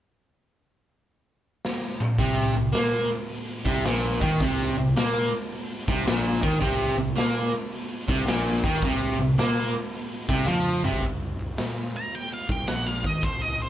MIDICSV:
0, 0, Header, 1, 5, 480
1, 0, Start_track
1, 0, Key_signature, -3, "minor"
1, 0, Tempo, 552995
1, 1901, Time_signature, 4, 2, 24, 8
1, 11886, End_track
2, 0, Start_track
2, 0, Title_t, "Lead electric guitar"
2, 0, Program_c, 0, 29
2, 10387, Note_on_c, 0, 82, 93
2, 10539, Note_off_c, 0, 82, 0
2, 10545, Note_on_c, 0, 79, 87
2, 10698, Note_off_c, 0, 79, 0
2, 10708, Note_on_c, 0, 77, 91
2, 10866, Note_off_c, 0, 77, 0
2, 10866, Note_on_c, 0, 79, 72
2, 11005, Note_off_c, 0, 79, 0
2, 11008, Note_on_c, 0, 78, 88
2, 11165, Note_on_c, 0, 77, 82
2, 11170, Note_off_c, 0, 78, 0
2, 11339, Note_off_c, 0, 77, 0
2, 11339, Note_on_c, 0, 75, 81
2, 11491, Note_on_c, 0, 72, 79
2, 11496, Note_off_c, 0, 75, 0
2, 11644, Note_on_c, 0, 75, 83
2, 11651, Note_off_c, 0, 72, 0
2, 11808, Note_off_c, 0, 75, 0
2, 11821, Note_on_c, 0, 72, 84
2, 11886, Note_off_c, 0, 72, 0
2, 11886, End_track
3, 0, Start_track
3, 0, Title_t, "Distorted electric guitar"
3, 0, Program_c, 1, 30
3, 1901, Note_on_c, 1, 48, 113
3, 2207, Note_off_c, 1, 48, 0
3, 2227, Note_on_c, 1, 48, 71
3, 2353, Note_off_c, 1, 48, 0
3, 2366, Note_on_c, 1, 58, 92
3, 2680, Note_off_c, 1, 58, 0
3, 3169, Note_on_c, 1, 48, 94
3, 3333, Note_off_c, 1, 48, 0
3, 3347, Note_on_c, 1, 46, 85
3, 3651, Note_off_c, 1, 46, 0
3, 3659, Note_on_c, 1, 51, 88
3, 3818, Note_off_c, 1, 51, 0
3, 3832, Note_on_c, 1, 48, 117
3, 4134, Note_off_c, 1, 48, 0
3, 4147, Note_on_c, 1, 48, 77
3, 4274, Note_off_c, 1, 48, 0
3, 4311, Note_on_c, 1, 58, 94
3, 4613, Note_off_c, 1, 58, 0
3, 5106, Note_on_c, 1, 48, 98
3, 5261, Note_off_c, 1, 48, 0
3, 5271, Note_on_c, 1, 46, 96
3, 5572, Note_off_c, 1, 46, 0
3, 5575, Note_on_c, 1, 51, 89
3, 5728, Note_off_c, 1, 51, 0
3, 5731, Note_on_c, 1, 48, 121
3, 6043, Note_off_c, 1, 48, 0
3, 6062, Note_on_c, 1, 48, 74
3, 6191, Note_off_c, 1, 48, 0
3, 6217, Note_on_c, 1, 58, 100
3, 6525, Note_off_c, 1, 58, 0
3, 7018, Note_on_c, 1, 48, 99
3, 7173, Note_off_c, 1, 48, 0
3, 7176, Note_on_c, 1, 46, 104
3, 7485, Note_off_c, 1, 46, 0
3, 7506, Note_on_c, 1, 51, 92
3, 7660, Note_off_c, 1, 51, 0
3, 7677, Note_on_c, 1, 48, 106
3, 7975, Note_off_c, 1, 48, 0
3, 7986, Note_on_c, 1, 48, 68
3, 8112, Note_off_c, 1, 48, 0
3, 8144, Note_on_c, 1, 58, 102
3, 8449, Note_off_c, 1, 58, 0
3, 8931, Note_on_c, 1, 48, 101
3, 9091, Note_off_c, 1, 48, 0
3, 9094, Note_on_c, 1, 53, 88
3, 9404, Note_off_c, 1, 53, 0
3, 9415, Note_on_c, 1, 48, 91
3, 9575, Note_off_c, 1, 48, 0
3, 11886, End_track
4, 0, Start_track
4, 0, Title_t, "Fingered electric bass"
4, 0, Program_c, 2, 33
4, 1898, Note_on_c, 2, 36, 81
4, 2193, Note_off_c, 2, 36, 0
4, 2212, Note_on_c, 2, 36, 76
4, 2367, Note_off_c, 2, 36, 0
4, 2376, Note_on_c, 2, 46, 91
4, 2672, Note_off_c, 2, 46, 0
4, 3174, Note_on_c, 2, 36, 95
4, 3329, Note_off_c, 2, 36, 0
4, 3349, Note_on_c, 2, 34, 89
4, 3639, Note_off_c, 2, 34, 0
4, 3660, Note_on_c, 2, 39, 96
4, 3812, Note_off_c, 2, 39, 0
4, 3825, Note_on_c, 2, 36, 92
4, 4117, Note_off_c, 2, 36, 0
4, 4141, Note_on_c, 2, 36, 67
4, 4292, Note_off_c, 2, 36, 0
4, 4300, Note_on_c, 2, 46, 90
4, 4595, Note_off_c, 2, 46, 0
4, 5104, Note_on_c, 2, 36, 107
4, 5254, Note_off_c, 2, 36, 0
4, 5260, Note_on_c, 2, 34, 97
4, 5555, Note_off_c, 2, 34, 0
4, 5580, Note_on_c, 2, 39, 91
4, 5732, Note_off_c, 2, 39, 0
4, 5751, Note_on_c, 2, 36, 87
4, 6040, Note_off_c, 2, 36, 0
4, 6055, Note_on_c, 2, 36, 73
4, 6209, Note_off_c, 2, 36, 0
4, 6224, Note_on_c, 2, 46, 92
4, 6516, Note_off_c, 2, 46, 0
4, 7016, Note_on_c, 2, 36, 106
4, 7169, Note_off_c, 2, 36, 0
4, 7188, Note_on_c, 2, 34, 100
4, 7478, Note_off_c, 2, 34, 0
4, 7497, Note_on_c, 2, 39, 77
4, 7650, Note_off_c, 2, 39, 0
4, 7655, Note_on_c, 2, 36, 80
4, 7951, Note_off_c, 2, 36, 0
4, 7971, Note_on_c, 2, 36, 69
4, 8126, Note_off_c, 2, 36, 0
4, 8144, Note_on_c, 2, 46, 98
4, 8436, Note_off_c, 2, 46, 0
4, 8931, Note_on_c, 2, 36, 88
4, 9086, Note_off_c, 2, 36, 0
4, 9099, Note_on_c, 2, 41, 89
4, 9393, Note_off_c, 2, 41, 0
4, 9414, Note_on_c, 2, 36, 79
4, 9565, Note_off_c, 2, 36, 0
4, 9570, Note_on_c, 2, 36, 89
4, 9869, Note_off_c, 2, 36, 0
4, 9882, Note_on_c, 2, 36, 66
4, 10042, Note_off_c, 2, 36, 0
4, 10048, Note_on_c, 2, 46, 83
4, 10348, Note_off_c, 2, 46, 0
4, 10842, Note_on_c, 2, 36, 99
4, 11002, Note_off_c, 2, 36, 0
4, 11006, Note_on_c, 2, 34, 86
4, 11307, Note_off_c, 2, 34, 0
4, 11328, Note_on_c, 2, 39, 85
4, 11480, Note_off_c, 2, 39, 0
4, 11485, Note_on_c, 2, 36, 80
4, 11786, Note_off_c, 2, 36, 0
4, 11804, Note_on_c, 2, 36, 77
4, 11886, Note_off_c, 2, 36, 0
4, 11886, End_track
5, 0, Start_track
5, 0, Title_t, "Drums"
5, 1430, Note_on_c, 9, 38, 80
5, 1517, Note_off_c, 9, 38, 0
5, 1739, Note_on_c, 9, 47, 90
5, 1826, Note_off_c, 9, 47, 0
5, 1892, Note_on_c, 9, 46, 61
5, 1896, Note_on_c, 9, 36, 109
5, 1979, Note_off_c, 9, 46, 0
5, 1983, Note_off_c, 9, 36, 0
5, 2377, Note_on_c, 9, 46, 52
5, 2388, Note_on_c, 9, 38, 102
5, 2464, Note_off_c, 9, 46, 0
5, 2474, Note_off_c, 9, 38, 0
5, 2857, Note_on_c, 9, 46, 60
5, 2943, Note_off_c, 9, 46, 0
5, 3173, Note_on_c, 9, 36, 94
5, 3260, Note_off_c, 9, 36, 0
5, 3337, Note_on_c, 9, 46, 73
5, 3347, Note_on_c, 9, 38, 127
5, 3424, Note_off_c, 9, 46, 0
5, 3434, Note_off_c, 9, 38, 0
5, 3659, Note_on_c, 9, 36, 94
5, 3745, Note_off_c, 9, 36, 0
5, 3823, Note_on_c, 9, 36, 118
5, 3823, Note_on_c, 9, 46, 64
5, 3910, Note_off_c, 9, 36, 0
5, 3910, Note_off_c, 9, 46, 0
5, 4307, Note_on_c, 9, 46, 49
5, 4318, Note_on_c, 9, 38, 100
5, 4394, Note_off_c, 9, 46, 0
5, 4404, Note_off_c, 9, 38, 0
5, 4785, Note_on_c, 9, 46, 54
5, 4871, Note_off_c, 9, 46, 0
5, 5104, Note_on_c, 9, 36, 96
5, 5191, Note_off_c, 9, 36, 0
5, 5264, Note_on_c, 9, 46, 62
5, 5274, Note_on_c, 9, 38, 127
5, 5351, Note_off_c, 9, 46, 0
5, 5361, Note_off_c, 9, 38, 0
5, 5583, Note_on_c, 9, 36, 107
5, 5670, Note_off_c, 9, 36, 0
5, 5745, Note_on_c, 9, 36, 111
5, 5745, Note_on_c, 9, 46, 61
5, 5831, Note_off_c, 9, 46, 0
5, 5832, Note_off_c, 9, 36, 0
5, 6225, Note_on_c, 9, 46, 54
5, 6235, Note_on_c, 9, 38, 102
5, 6311, Note_off_c, 9, 46, 0
5, 6322, Note_off_c, 9, 38, 0
5, 6699, Note_on_c, 9, 46, 57
5, 6786, Note_off_c, 9, 46, 0
5, 7016, Note_on_c, 9, 36, 97
5, 7103, Note_off_c, 9, 36, 0
5, 7180, Note_on_c, 9, 46, 66
5, 7190, Note_on_c, 9, 38, 127
5, 7267, Note_off_c, 9, 46, 0
5, 7277, Note_off_c, 9, 38, 0
5, 7352, Note_on_c, 9, 38, 27
5, 7439, Note_off_c, 9, 38, 0
5, 7498, Note_on_c, 9, 36, 113
5, 7585, Note_off_c, 9, 36, 0
5, 7659, Note_on_c, 9, 36, 116
5, 7661, Note_on_c, 9, 46, 58
5, 7746, Note_off_c, 9, 36, 0
5, 7748, Note_off_c, 9, 46, 0
5, 8142, Note_on_c, 9, 46, 55
5, 8152, Note_on_c, 9, 38, 107
5, 8229, Note_off_c, 9, 46, 0
5, 8239, Note_off_c, 9, 38, 0
5, 8618, Note_on_c, 9, 46, 58
5, 8705, Note_off_c, 9, 46, 0
5, 8930, Note_on_c, 9, 36, 100
5, 9017, Note_off_c, 9, 36, 0
5, 9093, Note_on_c, 9, 48, 72
5, 9180, Note_off_c, 9, 48, 0
5, 9410, Note_on_c, 9, 45, 95
5, 9487, Note_on_c, 9, 36, 76
5, 9497, Note_off_c, 9, 45, 0
5, 9569, Note_off_c, 9, 36, 0
5, 9569, Note_on_c, 9, 36, 100
5, 9569, Note_on_c, 9, 46, 50
5, 9656, Note_off_c, 9, 36, 0
5, 9656, Note_off_c, 9, 46, 0
5, 10044, Note_on_c, 9, 46, 50
5, 10054, Note_on_c, 9, 38, 100
5, 10131, Note_off_c, 9, 46, 0
5, 10141, Note_off_c, 9, 38, 0
5, 10526, Note_on_c, 9, 46, 54
5, 10613, Note_off_c, 9, 46, 0
5, 10842, Note_on_c, 9, 36, 99
5, 10929, Note_off_c, 9, 36, 0
5, 10995, Note_on_c, 9, 46, 65
5, 11006, Note_on_c, 9, 38, 111
5, 11082, Note_off_c, 9, 46, 0
5, 11093, Note_off_c, 9, 38, 0
5, 11165, Note_on_c, 9, 38, 26
5, 11252, Note_off_c, 9, 38, 0
5, 11322, Note_on_c, 9, 36, 105
5, 11408, Note_off_c, 9, 36, 0
5, 11481, Note_on_c, 9, 46, 54
5, 11485, Note_on_c, 9, 36, 111
5, 11568, Note_off_c, 9, 46, 0
5, 11572, Note_off_c, 9, 36, 0
5, 11886, End_track
0, 0, End_of_file